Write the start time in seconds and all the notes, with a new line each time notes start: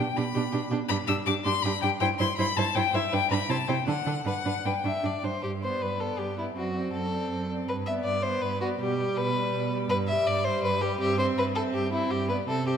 Already playing: G5
0.16 B2 D4 G4 B5
0.34 B2 D4 G4
0.52 B2 D4 G4
0.70 B2 D4 G4
0.89 G2 D4 G4 B5
1.07 G2 D4 G4 E6
1.26 G2 D4 G4 D6
1.44 G2 D4 G4 C6
1.62 G2 D4 G4 B5
1.82 G2 D4 G4 G5
2.00 G2 E4 C5 G5
2.19 G2 E4 C5 C6
2.37 G2 E4 C5 B5
2.56 G2 E4 C5 A5
2.75 G2 E4 C5 G5
2.93 G2 E4 C5 E5
3.12 G2 D4 B4 G5
3.30 G2 D4 B4 B5
3.49 C3 E4 C5 A5
3.68 C3 E4 C5 G5
3.87 D3 D4 A4 F#5
4.06 D3 D4 A4
4.25 G2 D4 B4 F#5
4.45 G2 D4 B4
4.65 G2 D4 B4 G5
4.84 G2 D4 E5
5.03 G2 D4 D5
5.23 G2 D4 C5
5.43 G2 G4
5.62 B3 C5 D5
5.80 G2 B4
5.99 B3 A4 D5
6.18 G2 G4
6.37 B3 E4 D5
6.55 F#2 C4 F#4 D5
6.75 C4 D5
6.92 F#2 A4
7.12 C4 D5
7.29 F#2
7.49 C4 D5
7.68 G2 B4
7.86 B3 D5 E5
8.04 G2 D5
8.23 B3 C5 D5
8.42 G2 B4
8.61 B3 F#4 D5
8.79 B2 G3 G4 D5
8.99 G3 D5
9.16 B2 B4
9.35 G3 D5
9.53 B2
9.72 G3 D5
9.90 G2 B4
10.08 G3 D5 E5
10.26 G2 D5
10.45 G3 C5 D5
10.63 G2 B4
10.81 G3 G4 D5
11.00 G2 C4 G4 E5
11.19 C4 C5 E5
11.37 G2 B4
11.55 C4 A4 E5
11.74 G2 G4
11.92 C4 E4 E5
12.10 G2 G4
12.29 B3 B4 D5
12.47 C3 C4 A4 E5
12.65 C4 G4 E5